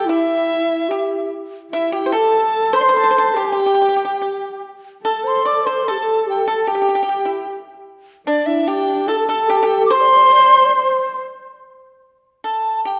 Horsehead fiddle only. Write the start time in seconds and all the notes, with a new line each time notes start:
0.07 E4
1.72 E4
2.13 A4
2.75 C5
3.37 G4
5.05 A4
5.87 A4
6.68 G4
8.29 D4
9.10 A4
9.93 C5